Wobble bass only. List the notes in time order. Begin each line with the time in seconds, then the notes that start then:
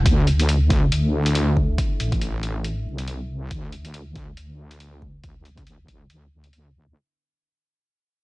0.06 D2
0.92 D2
2.00 A1
2.86 C2
3.51 D2
4.37 D2
5.24 D2
5.88 D2
6.75 D2